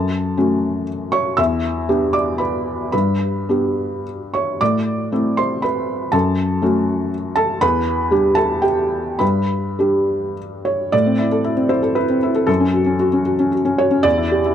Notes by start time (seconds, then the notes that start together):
Already playing: F#2 A4 A5
0.37 A3 C#4 F#4
1.12 C#5 C#6
1.37 E2 E5 E6
1.89 B3 D4 G4
2.13 D5 D6
2.38 B4 B5
2.92 G2 B4 B5
3.49 B3 D4 G4
4.34 C#5 C#6
4.61 A2 D5 D6
5.12 A3 C4 E4
5.37 C5 C6
5.62 B4 B5
6.12 F#2 A4 A5
6.62 A3 C#4 F#4
7.36 A4 A5
7.61 E2 B4 B5
8.11 G3 D4 G4
8.35 A4 A5
8.62 G4 G5
9.19 G2 B4 B5
9.79 G3 D4 G4
10.65 C#5
10.92 A2 D5
11.06 C4
11.19 E4
11.32 A4
11.44 E4
11.57 C4
11.69 E4 C5
11.83 A4
11.95 E4 B4
12.09 C4
12.23 E4
12.35 A4
12.47 F#2 A4
12.60 C#4
12.74 F#4
12.86 C#4
12.99 F#4
13.13 C#4
13.26 F#4
13.39 C#4
13.52 F#4
13.65 C#4
13.78 F#4 C#5
13.91 C#4
14.03 E2 D5
14.18 E4
14.32 G4
14.45 E4